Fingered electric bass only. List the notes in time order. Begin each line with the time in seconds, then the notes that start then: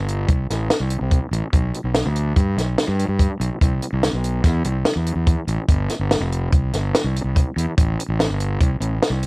0.00 G1
0.28 C2
0.50 A1
0.80 C2
1.01 C2
1.31 A1
1.53 B1
1.84 B1
2.06 D2
2.36 G2
2.57 B1
2.88 G2
3.08 G2
3.40 B1
3.61 C2
3.93 C2
4.13 B1
4.44 E2
4.65 C2
4.96 E2
5.15 E2
5.47 A1
5.68 G1
5.99 G1
6.20 F1
6.53 C2
6.73 G1
7.04 C2
7.24 C2
7.56 E2
7.78 A1
8.08 A1
8.30 G1
8.61 C2
8.80 A1
9.10 C2